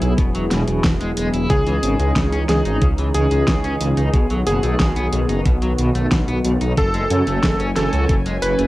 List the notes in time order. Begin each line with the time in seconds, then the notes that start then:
Already playing: F#3 B3 E4 G#4
0.02 B1 E4, closed hi-hat
0.18 E1 B2, kick, closed hi-hat
0.35 E1 F#3, closed hi-hat
0.51 E1 B2, snare, closed hi-hat
0.68 E1 B2, closed hi-hat
0.84 E1 B2, kick, snare, closed hi-hat
1.00 E1 G#3, closed hi-hat
1.17 E1 G#3, closed hi-hat
1.33 E1 E4, closed hi-hat
1.50 C#2 C#3 E3 C#4 D#4 G#4, kick, closed hi-hat
1.66 C#2 E3, closed hi-hat
1.83 G#1 C#3, closed hi-hat
1.99 C#2 G#3, closed hi-hat
2.16 C#2 C#3, kick, snare, closed hi-hat
2.32 C#2 C#4, closed hi-hat
2.49 C#2 C#3 G#4, snare, closed hi-hat
2.65 G#1 D#4, closed hi-hat
2.82 C#2 C#3, kick, closed hi-hat
2.98 C#2 E3, closed hi-hat
3.15 C#2 C#3 G#4, closed hi-hat
3.31 C#2 G#3, closed hi-hat
3.48 C#2 C#3, kick, snare, closed hi-hat
3.64 C#2 C#4, closed hi-hat
3.81 C#2 C#3, closed hi-hat
3.97 C#2 D#4, closed hi-hat
4.13 B1 B2 D#3 B3 F#4, kick, closed hi-hat
4.30 B1 F#3, closed hi-hat
4.47 F#1 B2 G#4, closed hi-hat
4.63 B1 A3, closed hi-hat
4.80 B1 B2, kick, snare, closed hi-hat
4.96 B1 B3, closed hi-hat
5.13 B1 B2, closed hi-hat
5.29 F#1 D#4, closed hi-hat
5.45 B1 B2, kick, closed hi-hat
5.62 B1 F#3, closed hi-hat
5.78 B1 B2, closed hi-hat
5.95 B1 A3, closed hi-hat
6.11 B1 B2, kick, snare, closed hi-hat
6.28 B1 B3, closed hi-hat
6.44 B1 B2, closed hi-hat
6.61 B1 D#4, closed hi-hat
6.77 F#1 C#3 F#3 C#4 A4 G#5, kick, closed hi-hat
6.94 F#1 G#3, closed hi-hat
7.10 F#2 C#3, closed hi-hat
7.27 F#1 A3, closed hi-hat
7.43 F#1 C#3, kick, snare, closed hi-hat
7.60 F#1 C#4, closed hi-hat
7.76 F#1 C#3 A4, snare, closed hi-hat
7.93 C#2 F#4, closed hi-hat
8.09 F#1 C#3, kick, closed hi-hat
8.26 F#1 G#3, closed hi-hat
8.42 F#1 C#3 B4, closed hi-hat
8.59 F#1 A3, closed hi-hat